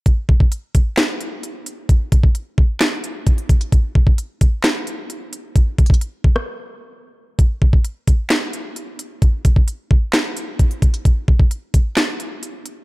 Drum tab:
HH |x-----------x-----x-----x-----x-----x-----x-----|x-----x-----x-----------x-----x-----x--x--x--x--|x-----------x-----x-----x-----x-----x-----x-----|x-----x-x-x-x-----------------------------------|
CP |------------------------x-----------------------|------------------------x-----------------------|------------------------x-----------------------|------------------------------------------------|
SD |------------------------o-----------------------|------------------------o-----------------------|------------------------o-----------------------|---------------------r--------------------------|
BD |o-----o--o--------o-----------------------------|o-----o--o--------o-----------------o-----o-----|o-----o--o--------o-----------------------------|o-----o--o--------o-----------------------------|

HH |x-----------x-----x-----x-----x-----x-----x-----|x-----x-----x-----------x-----x-----x--x--x--x--|x-----------x-----x-----x-----x-----x-----x-----|
CP |------------------------x-----------------------|------------------------x-----------------------|------------------------x-----------------------|
SD |------------------------o-----------------------|------------------------o-----------------------|------------------------o-----------------------|
BD |o-----o--o--------o-----------------------------|o-----o--o--------o-----------------o-----o-----|o-----o--o--------o-----------------------------|